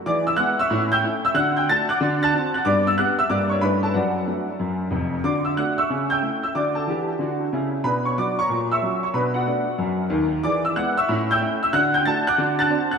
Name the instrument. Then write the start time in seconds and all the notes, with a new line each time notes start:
grand piano
0.06 E3 G#4 D5 D6
0.27 E5 E6
0.36 G#3 B3 E4 F#5 F#6
0.59 E5 C#6 E6
0.70 A2 C#4
0.92 G5 E6 G6
1.04 A3 C#4 E4
1.25 E5 E6
1.34 D3 F#4 F#5 F#6
1.57 G5 G6
1.69 A3 D4 F#4 A5 A6
1.89 F#5 D6 F#6
2.00 D3 F#4
2.23 A5 F#6 A6
2.34 C4 D4 F#4
2.54 F#5 F#6
2.65 G2 B3 D5 D6
2.87 E5 E6
2.98 B3 D4 G4 F#5 F#6
3.19 E5 E6
3.29 G2 A#3 D4 G4 D5 D6
3.49 C#5 C#6
3.61 G2 A3 C#4 E4 B4 B5
3.83 A4 A5
3.94 F#2 F#4 D5 F#5
4.27 A3 D4 F#4
4.59 F#2
4.90 F1 F2
5.24 D3 F#4 D5 D6
5.45 E5 E6
5.57 A3 D4 F#4 F#5 F#6
5.78 E5 C#6 E6
5.90 C#3
6.10 G5 E6 G6
6.22 A3 E4
6.43 E5 E6
6.55 D3 F#4 D5 D6
6.75 A4 F#5 A5
6.87 E3 G4
7.19 D3 F#4
7.53 C#3 E4
7.84 B2 D4 B4 B5
8.05 C#5 C#6
8.18 F#3 D4 F#4 D5 D6
8.39 C#5 A#5 C#6
8.49 A#2
8.71 E5 C#6 E6
8.82 F#3 C#4 F#4
9.03 C#5 C#6
9.13 B2 D4 B4 B5
9.34 F#4 D5 F#5
9.46 A3 B3 D4
9.78 F#2
10.10 D#2 D#3
10.43 E3 G#4 D5 D6
10.65 E5 E6
10.76 G#3 B3 E4 F#5 F#6
10.97 E5 C#6 E6
11.09 A2 C#4
11.31 G5 E6 G6
11.40 A3 C#4 E4
11.63 E5 E6
11.73 D3 F#4 F#5 F#6
11.94 G5 G6
12.05 A3 D4 F#4 A5 A6
12.27 F#5 D6 F#6
12.38 D3 F#4
12.59 A5 F#6 A6
12.69 C4 D4 F#4
12.91 F#5 F#6